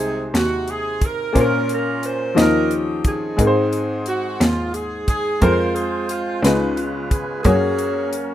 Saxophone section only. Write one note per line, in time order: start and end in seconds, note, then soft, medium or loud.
0.00 0.31 C4 medium
0.00 0.31 D#4 medium
0.00 0.31 G#4 medium
0.37 0.69 F#4 medium
0.70 1.03 G#4 medium
1.05 1.37 A#4 medium
1.38 2.34 C#4 medium
1.38 2.35 F4 medium
1.38 1.69 A#4 medium
1.74 2.03 A#4 loud
2.05 2.38 C5 loud
2.40 3.36 C#4 medium
2.40 3.36 G4 medium
2.40 2.73 A#4 medium
3.06 4.04 C4 medium
3.06 4.04 D#4 medium
3.06 4.03 G#4 medium
4.07 4.41 F#4 medium
4.41 4.75 F4 medium
4.74 5.07 G#4 medium
5.08 5.40 G#4 medium
5.41 6.08 F4 medium
5.41 5.73 A#4 medium
5.75 6.09 G#4 medium
6.09 6.43 F4 medium
6.42 7.41 G#3 medium
6.42 7.41 B3 medium
6.42 6.77 D#4 medium
6.76 7.10 F4 medium
7.10 7.42 G#4 medium
7.43 8.34 C#4 medium
7.43 8.15 G#4 medium